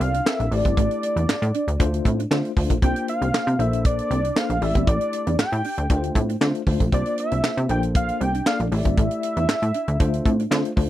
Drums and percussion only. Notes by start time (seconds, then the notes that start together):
0.01 closed hi-hat
0.14 closed hi-hat
0.26 snare, clap
0.40 closed hi-hat
0.52 open hi-hat
0.65 kick, closed hi-hat
0.77 kick, closed hi-hat
0.91 closed hi-hat
1.03 closed hi-hat
1.17 closed hi-hat
1.29 snare, clap
1.43 closed hi-hat
1.54 closed hi-hat
1.68 closed hi-hat
1.80 kick, closed hi-hat
1.94 closed hi-hat
2.05 kick, closed hi-hat
2.20 closed hi-hat
2.31 snare, clap
2.45 closed hi-hat
2.57 kick, open hi-hat
2.70 kick, closed hi-hat
2.82 kick, closed hi-hat
2.96 closed hi-hat
3.08 closed hi-hat
3.22 closed hi-hat
3.34 snare, clap
3.48 closed hi-hat
3.60 closed hi-hat
3.73 closed hi-hat
3.85 kick, closed hi-hat
3.99 closed hi-hat
4.11 closed hi-hat
4.24 closed hi-hat
4.36 snare, clap
4.50 closed hi-hat
4.62 open hi-hat
4.75 kick, closed hi-hat
4.87 kick, closed hi-hat
5.01 closed hi-hat
5.13 closed hi-hat
5.27 closed hi-hat
5.39 snare, clap
5.52 closed hi-hat
5.64 open hi-hat
5.78 closed hi-hat
5.90 kick, closed hi-hat
6.03 closed hi-hat
6.15 kick, closed hi-hat
6.29 closed hi-hat
6.41 snare, clap
6.55 closed hi-hat
6.67 kick, open hi-hat
6.80 kick, closed hi-hat
6.92 kick, closed hi-hat
7.06 closed hi-hat
7.18 closed hi-hat
7.31 closed hi-hat
7.44 snare, clap
7.57 closed hi-hat
7.69 closed hi-hat
7.83 closed hi-hat
7.95 kick, closed hi-hat
8.09 closed hi-hat
8.21 closed hi-hat
8.34 closed hi-hat
8.46 snare, clap
8.60 closed hi-hat
8.72 open hi-hat
8.85 kick, closed hi-hat
8.97 kick, closed hi-hat
9.11 closed hi-hat
9.23 closed hi-hat
9.37 closed hi-hat
9.49 snare, clap
9.62 closed hi-hat
9.74 closed hi-hat
9.88 closed hi-hat
10.00 kick, closed hi-hat
10.13 closed hi-hat
10.25 kick, closed hi-hat
10.40 closed hi-hat
10.51 snare, clap
10.65 closed hi-hat
10.77 kick, open hi-hat